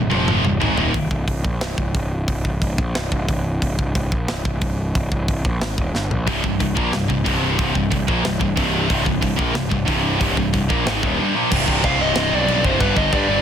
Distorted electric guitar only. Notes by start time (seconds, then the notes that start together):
0.10 F2 C3 F3
0.44 C2 G2
0.60 G#2 D#3 G#3
0.77 D#2 A#2 D#3
6.27 C2 G2 C3
6.44 C2 G2
6.60 C2 G2
6.75 A#2 F3 A#3
6.92 C2 G2
7.08 C2 G2
7.24 C2 G2 C3
7.57 C2 G2 C3
7.74 C2 G2
7.91 C2 G2
8.08 A#2 F3 A#3
8.24 C2 G2
8.40 C2 G2
8.56 C2 G2 C3
8.88 C2 G2 C3
9.05 C2 G2
9.22 C2 G2
9.37 A#2 F3 A#3
9.54 C2 G2
9.70 C2 G2
9.86 C2 G2 C3
10.20 C2 G2 C3
10.36 C2 G2
10.53 C2 G2
10.69 A#2 F3 A#3
10.86 G#2 D#3 G#3
11.02 D#2 A#2 D#3
11.19 G2 D3 G3
11.35 A#2 F3 A#3
11.51 C2 G2 C3
11.67 C2 G2 C3
11.83 C2 G2 C3
11.99 C2 G2 C3
12.15 C2 G2 C3
12.32 C2 G2 C3
12.47 C2 G2 C3
12.63 C2 G2 C3
12.80 G2 D3 G3
12.95 G2 D3 G3
13.11 G2 D3 G3
13.28 G2 D3 G3